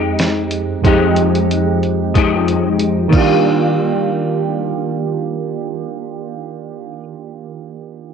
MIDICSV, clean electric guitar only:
0, 0, Header, 1, 2, 480
1, 0, Start_track
1, 0, Key_signature, -3, "major"
1, 0, Tempo, 652884
1, 621, Time_signature, 4, 2, 24, 8
1, 5983, End_track
2, 0, Start_track
2, 0, Title_t, "Clean electric guitar"
2, 0, Program_c, 0, 27
2, 0, Note_on_c, 0, 56, 40
2, 0, Note_on_c, 0, 63, 47
2, 0, Note_on_c, 0, 67, 51
2, 615, Note_on_c, 0, 53, 80
2, 616, Note_off_c, 0, 56, 0
2, 624, Note_on_c, 0, 56, 75
2, 629, Note_off_c, 0, 63, 0
2, 632, Note_on_c, 0, 63, 79
2, 637, Note_off_c, 0, 67, 0
2, 640, Note_on_c, 0, 67, 84
2, 1573, Note_off_c, 0, 53, 0
2, 1576, Note_on_c, 0, 53, 79
2, 1577, Note_off_c, 0, 56, 0
2, 1586, Note_on_c, 0, 56, 88
2, 1590, Note_off_c, 0, 63, 0
2, 1593, Note_on_c, 0, 63, 83
2, 1598, Note_off_c, 0, 67, 0
2, 1601, Note_on_c, 0, 67, 81
2, 2271, Note_off_c, 0, 53, 0
2, 2274, Note_on_c, 0, 51, 72
2, 2301, Note_off_c, 0, 56, 0
2, 2304, Note_on_c, 0, 55, 76
2, 2329, Note_off_c, 0, 63, 0
2, 2332, Note_on_c, 0, 62, 70
2, 2353, Note_off_c, 0, 67, 0
2, 2356, Note_on_c, 0, 65, 81
2, 5084, Note_off_c, 0, 51, 0
2, 5114, Note_off_c, 0, 55, 0
2, 5142, Note_off_c, 0, 62, 0
2, 5166, Note_off_c, 0, 65, 0
2, 5983, End_track
0, 0, End_of_file